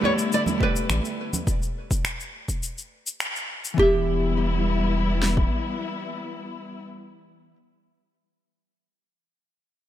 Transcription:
0.00 1.45 D3 medium
0.00 1.45 G3 medium
0.00 1.43 A3 medium
0.00 0.56 A3 medium
0.00 1.45 B3 medium
0.00 1.45 E4 medium
0.00 0.57 G4 medium
0.00 0.57 B4 medium
0.00 high conga medium
0.04 0.12 C#5 medium
0.04 0.58 D5 loud
0.19 shaker medium
0.32 0.42 D5 loud
0.32 shaker medium
0.46 high conga loud
0.46 shaker soft
0.58 1.44 A3 medium
0.58 1.45 G4 medium
0.58 1.46 B4 medium
0.58 kick loud
0.63 1.47 D5 medium
0.76 shaker medium
0.89 1.00 A1 loud
0.89 finger snap loud
0.89 high conga medium
0.89 shaker medium
1.05 shaker soft
1.33 high conga medium
1.33 shaker medium
1.47 kick loud
1.47 shaker medium
1.62 shaker soft
1.91 kick loud
1.91 shaker medium
2.05 finger snap loud
2.05 shaker medium
2.20 shaker soft
2.48 kick medium
2.48 shaker medium
2.63 shaker medium
2.78 shaker soft
3.07 shaker medium
3.20 finger snap loud
3.20 shaker medium
3.36 shaker soft
3.65 shaker medium
3.74 7.53 E3 medium
3.74 6.85 G3 medium
3.74 7.54 B3 medium
3.74 6.85 B3 medium
3.74 6.85 E4 medium
3.78 5.47 E1 medium
3.78 7.56 G4 medium
3.78 kick loud
3.82 7.57 E5 loud
5.22 snare medium
5.37 kick medium

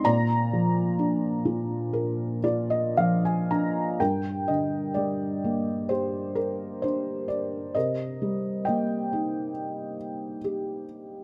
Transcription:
0.04 3.96 A#2 medium
0.04 2.42 D5 medium
0.04 2.92 A#5 loud
0.53 2.39 F3 medium
0.99 2.93 D4 medium
1.45 2.42 F4 medium
1.93 3.96 A#4 medium
2.44 3.96 F4 medium
2.44 2.68 D5 medium
2.70 2.95 D#5 medium
2.97 3.97 F3 medium
2.97 3.22 F5 medium
3.25 3.49 G#5 medium
3.51 3.98 D4 medium
3.51 3.96 A#5 medium
4.00 7.72 G2 soft
4.00 5.85 A#4 medium
4.00 4.49 G5 medium
4.48 6.33 D3 soft
4.48 4.92 D#5 medium
4.94 6.79 G3 soft
4.94 5.91 D5 medium
5.44 7.26 A#3 soft
5.89 7.72 G4 medium
5.89 6.37 C5 medium
6.35 6.84 A#4 medium
6.82 7.73 D4 soft
6.82 7.26 C5 medium
7.28 7.76 D5 medium
7.75 11.24 C3 medium
7.75 9.51 A#4 medium
7.75 8.65 D#5 medium
8.22 9.95 G3 soft
8.65 10.40 A#3 medium
8.65 10.39 D#5 soft
8.65 10.38 G5 medium
9.13 10.83 D#4 medium
10.44 11.24 G4 medium

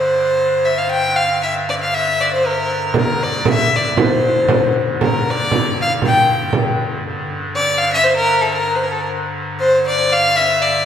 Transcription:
0.00 2.94 G2 medium
0.00 2.94 D3 medium
0.00 0.66 C5 medium
0.65 0.79 E5 medium
0.78 0.90 F5 medium
0.90 1.17 G5 loud
1.16 1.41 F5 loud
1.43 1.54 E5 medium
1.69 1.74 D5 medium
1.82 1.96 F5 medium
1.94 2.22 E5 medium
2.21 2.32 D5 medium
2.34 2.48 C5 medium
2.47 2.96 A#4 medium
2.94 7.03 G2 medium
2.94 7.04 D3 medium
2.94 3.25 A#4 medium
2.94 frame drum medium
3.23 3.48 D5 medium
3.45 frame drum medium
3.50 3.77 E5 medium
3.76 3.99 D5 medium
3.97 4.72 C5 medium
3.97 frame drum medium
4.48 frame drum medium
5.01 5.32 A#4 medium
5.01 frame drum medium
5.30 5.79 D5 medium
5.51 frame drum medium
5.82 5.92 F5 medium
6.02 6.51 G5 medium
6.02 frame drum medium
6.28 frame drum soft
6.53 frame drum medium
6.78 frame drum soft
7.05 10.85 G2 medium
7.05 10.85 D3 medium
7.55 7.80 D5 loud
7.78 7.92 F5 loud
7.92 8.05 E5 loud
8.04 8.15 C5 loud
8.16 8.43 A#4 loud
8.41 8.53 A4 medium
8.53 8.77 A#4 medium
8.75 8.85 C5 medium
8.84 8.93 A#4 medium
8.92 9.02 A4 medium
9.00 9.08 A#4 medium
9.59 9.82 C5 loud
9.87 10.14 D5 loud
10.13 10.38 F5 loud
10.37 10.63 E5 loud
10.61 10.85 D5 medium

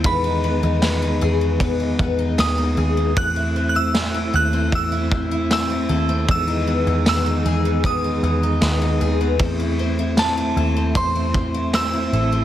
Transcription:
0.00 0.24 E4 medium
0.00 0.13 A4 medium
0.00 0.10 E6 medium
0.04 0.60 E2 loud
0.04 3.13 D#3 medium
0.04 3.13 G#3 medium
0.04 0.43 B3 medium
0.04 3.13 B3 medium
0.04 3.13 D#4 medium
0.04 3.13 G#4 medium
0.04 2.46 B5 medium
0.04 kick loud
0.04 ride medium
0.24 0.62 D#4 medium
0.44 0.82 B3 medium
0.63 1.19 E2 medium
0.63 1.01 D#4 medium
0.82 1.40 B3 medium
0.82 snare loud
0.82 ride medium
0.82 tambourine medium
1.02 1.79 D#4 medium
1.21 1.96 E2 loud
1.21 2.76 G#4 medium
1.41 1.60 B3 medium
1.60 1.99 B3 medium
1.60 kick loud
1.60 ride medium
1.80 2.18 D#4 medium
1.99 2.37 E2 loud
1.99 2.37 B3 medium
1.99 kick loud
2.19 2.57 D#4 medium
2.38 2.76 D#2 medium
2.38 2.96 B3 medium
2.38 3.13 D#6 loud
2.38 snare loud
2.38 ride medium
2.38 tambourine medium
2.58 3.24 D#4 medium
2.77 3.15 D#2 loud
2.77 3.24 G#4 medium
2.97 3.24 B3 medium
3.17 4.29 E2 loud
3.17 6.25 A3 medium
3.17 6.25 C4 medium
3.17 6.25 E4 medium
3.17 3.68 F#6 loud
3.17 kick loud
3.17 ride medium
3.36 3.75 E4 medium
3.56 3.94 C4 medium
3.69 3.76 F#6 medium
3.75 4.14 E4 medium
3.75 4.36 E6 loud
3.94 4.52 C4 medium
3.94 snare loud
3.94 ride medium
3.94 tambourine medium
4.14 4.91 E4 medium
4.34 4.71 D#2 loud
4.34 5.88 A4 medium
4.34 4.75 F#6 loud
4.53 5.10 C4 medium
4.72 5.85 E2 loud
4.72 5.52 E6 loud
4.72 kick loud
4.72 ride medium
4.92 5.31 E4 medium
5.12 5.49 C4 medium
5.12 kick medium
5.31 5.70 E4 medium
5.51 6.08 C4 medium
5.51 6.30 E6 loud
5.51 snare loud
5.51 ride medium
5.51 tambourine medium
5.70 6.47 E4 medium
5.89 6.26 D#2 medium
5.89 6.36 A4 medium
6.09 6.28 C4 medium
6.28 6.84 E2 loud
6.28 9.37 D#3 medium
6.28 9.37 G#3 medium
6.28 6.66 B3 medium
6.28 9.37 B3 medium
6.28 9.37 D#4 medium
6.28 9.37 G#4 medium
6.28 7.08 E6 loud
6.28 kick loud
6.28 ride medium
6.48 6.86 D#4 medium
6.67 7.06 B3 medium
6.87 7.42 E2 medium
6.87 7.25 D#4 medium
7.06 7.64 B3 medium
7.06 7.88 E6 medium
7.06 snare loud
7.06 ride medium
7.06 tambourine medium
7.26 8.03 D#4 medium
7.45 8.19 E2 loud
7.45 9.00 G#4 medium
7.65 7.83 B3 medium
7.84 8.22 B3 medium
7.84 8.98 D#6 medium
7.84 kick loud
7.84 ride medium
8.04 8.42 D#4 medium
8.23 8.60 E2 loud
8.23 8.61 B3 medium
8.43 8.80 D#4 medium
8.62 8.99 D#2 loud
8.62 9.20 B3 medium
8.62 snare loud
8.62 ride medium
8.62 tambourine medium
8.82 9.48 D#4 medium
9.01 9.38 D#2 medium
9.01 9.48 G#4 medium
9.21 9.40 B3 medium
9.39 10.53 E2 loud
9.39 12.45 A3 medium
9.39 12.45 C4 medium
9.39 9.78 C4 medium
9.39 12.45 E4 medium
9.39 kick loud
9.39 ride medium
9.60 9.98 E4 medium
9.79 10.17 C4 medium
9.99 10.36 E4 medium
10.17 10.75 C4 medium
10.17 10.99 A5 medium
10.17 snare loud
10.17 ride medium
10.17 tambourine medium
10.37 11.14 E4 medium
10.56 10.94 D#2 medium
10.56 12.12 A4 medium
10.77 10.95 C4 medium
10.95 12.08 E2 loud
10.95 11.34 C4 medium
10.95 11.77 C6 loud
10.95 kick loud
10.95 ride medium
11.16 11.53 E4 medium
11.34 11.73 C4 medium
11.34 kick loud
11.54 11.92 E4 medium
11.73 12.31 C4 medium
11.73 12.45 E6 loud
11.73 snare loud
11.73 ride medium
11.73 tambourine medium
11.94 12.45 E4 medium
12.13 12.45 A1 medium
12.13 12.45 A4 medium
12.32 12.45 C4 medium

